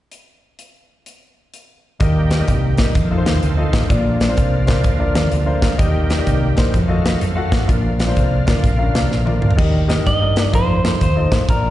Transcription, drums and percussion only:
0.11 closed hi-hat
0.59 closed hi-hat
1.06 closed hi-hat
1.54 closed hi-hat
2.00 kick, closed hi-hat
2.31 snare, closed hi-hat
2.48 kick, closed hi-hat
2.77 kick, snare, closed hi-hat
2.95 kick, closed hi-hat
3.26 snare, closed hi-hat
3.43 closed hi-hat
3.73 kick, snare, closed hi-hat
3.90 kick, closed hi-hat
4.20 snare, closed hi-hat
4.37 kick, closed hi-hat
4.67 kick, snare, closed hi-hat
4.84 kick, closed hi-hat
5.15 snare, closed hi-hat
5.32 closed hi-hat
5.62 kick, snare, closed hi-hat
5.79 kick, closed hi-hat
6.10 snare, closed hi-hat
6.27 kick, closed hi-hat
6.57 kick, snare, closed hi-hat
6.74 kick, closed hi-hat
7.06 snare, closed hi-hat
7.21 closed hi-hat
7.52 kick, snare, closed hi-hat
7.69 kick, closed hi-hat
8.00 snare, closed hi-hat
8.16 kick, closed hi-hat
8.47 kick, snare, closed hi-hat
8.64 kick, closed hi-hat
8.95 snare, closed hi-hat
9.11 snare
9.27 high tom
9.42 mid tom
9.51 floor tom
9.58 kick, crash
9.89 snare, closed hi-hat
10.06 kick, closed hi-hat
10.36 snare, closed hi-hat
10.53 kick, closed hi-hat
10.85 snare, closed hi-hat
11.01 kick, closed hi-hat
11.32 kick, snare, closed hi-hat
11.49 kick, closed hi-hat

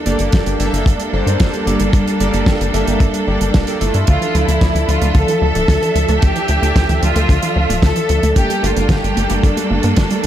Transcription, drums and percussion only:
0.06 closed hi-hat
0.19 closed hi-hat
0.32 kick, snare, closed hi-hat
0.46 closed hi-hat
0.60 closed hi-hat
0.74 closed hi-hat
0.86 kick, closed hi-hat
1.00 closed hi-hat
1.27 closed hi-hat
1.40 kick, snare, closed hi-hat
1.54 closed hi-hat
1.67 closed hi-hat
1.80 closed hi-hat
1.93 kick, closed hi-hat
2.08 closed hi-hat
2.20 closed hi-hat
2.34 closed hi-hat
2.46 kick, snare, closed hi-hat
2.61 closed hi-hat
2.74 closed hi-hat
2.87 closed hi-hat
3.00 kick, closed hi-hat
3.14 closed hi-hat
3.41 closed hi-hat
3.54 kick, snare, closed hi-hat
3.67 closed hi-hat
3.81 closed hi-hat
3.94 closed hi-hat
4.07 kick, closed hi-hat
4.22 closed hi-hat
4.35 closed hi-hat
4.49 closed hi-hat
4.61 kick, snare, closed hi-hat
4.76 closed hi-hat
4.89 closed hi-hat
5.02 closed hi-hat
5.15 kick, closed hi-hat
5.28 closed hi-hat
5.55 closed hi-hat
5.68 kick, snare, closed hi-hat
5.83 closed hi-hat
5.96 closed hi-hat
6.09 closed hi-hat
6.22 kick, closed hi-hat
6.36 closed hi-hat
6.48 closed hi-hat
6.63 closed hi-hat
6.76 kick, snare, closed hi-hat
6.89 closed hi-hat
7.03 closed hi-hat
7.16 closed hi-hat
7.29 kick, closed hi-hat
7.42 closed hi-hat
7.70 closed hi-hat
7.82 kick, snare, closed hi-hat
7.96 closed hi-hat
8.09 closed hi-hat
8.23 closed hi-hat
8.36 kick, closed hi-hat
8.50 closed hi-hat
8.64 closed hi-hat
8.77 closed hi-hat
8.89 kick, snare, closed hi-hat
9.04 closed hi-hat
9.17 closed hi-hat
9.30 closed hi-hat
9.43 kick, closed hi-hat
9.57 closed hi-hat
9.83 closed hi-hat
9.96 kick, snare, closed hi-hat
10.10 closed hi-hat
10.24 closed hi-hat

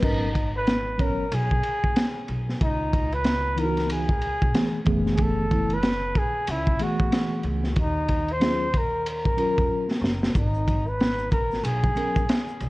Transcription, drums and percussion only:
0.03 kick, crash
0.35 kick, ride
0.67 snare, hi-hat pedal, ride
0.99 kick, ride
1.32 ride
1.51 kick
1.63 ride
1.84 kick
1.96 snare, hi-hat pedal, ride
2.28 ride
2.49 snare
2.61 kick, ride
2.93 kick, ride
3.12 ride
3.24 snare, hi-hat pedal, ride
3.58 ride
3.77 snare, ride
3.90 ride
4.09 kick
4.22 ride
4.42 kick
4.54 snare, hi-hat pedal, ride
4.86 kick, ride
5.06 snare
5.17 kick, ride
5.51 kick, ride
5.70 ride
5.83 snare, hi-hat pedal, ride
6.15 kick, ride
6.47 ride
6.67 kick
6.79 ride
7.00 kick
7.12 snare, hi-hat pedal, ride
7.43 ride
7.64 snare
7.76 kick, ride
8.08 kick, ride
8.28 ride
8.41 snare, hi-hat pedal, ride
8.74 kick, ride
9.06 ride
9.25 kick
9.38 ride
9.58 kick, ride
9.91 snare
10.04 snare
10.23 snare
10.35 kick, ride, shaker
10.54 shaker
10.67 kick, ride, high conga, shaker
10.87 shaker
10.99 snare, hi-hat pedal, ride, shaker
11.19 shaker
11.31 kick, ride, low conga, shaker
11.51 snare, shaker
11.64 ride, shaker
11.83 kick, high conga, shaker
11.96 ride, low conga, shaker
12.16 kick, ride, high conga, shaker
12.29 snare, hi-hat pedal, ride, shaker
12.48 shaker
12.60 ride, low conga, shaker

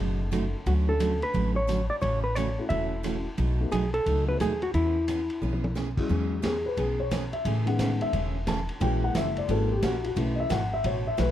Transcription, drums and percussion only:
0.33 hi-hat pedal, ride
0.66 kick, ride
1.00 hi-hat pedal, ride
1.22 ride
1.34 kick, ride
1.69 hi-hat pedal, ride
2.02 kick, ride
2.36 hi-hat pedal, ride
2.70 kick, ride
3.04 hi-hat pedal, ride
3.38 kick, ride
3.72 hi-hat pedal, ride
3.94 ride
4.06 kick, ride
4.40 hi-hat pedal, ride
4.62 ride
4.74 kick, ride
5.08 hi-hat pedal, ride
5.30 ride
5.42 high tom
5.53 high tom
5.64 high tom
5.76 snare, hi-hat pedal
5.97 kick, crash
6.09 kick
6.43 kick, snare, hi-hat pedal, ride
6.77 kick, ride
7.11 kick, snare, hi-hat pedal, ride
7.33 ride
7.45 kick, ride
7.67 ride
7.79 kick, snare, hi-hat pedal, ride
8.01 ride
8.13 kick, ride
8.47 kick, snare, hi-hat pedal, ride
8.69 ride
8.81 kick, ride
9.15 kick, snare, hi-hat pedal, ride
9.37 ride
9.49 kick, ride
9.83 kick, snare, hi-hat pedal, ride
10.04 ride
10.17 kick, ride
10.50 kick, snare, hi-hat pedal, ride
10.84 kick, ride
11.18 kick, snare, hi-hat pedal, ride

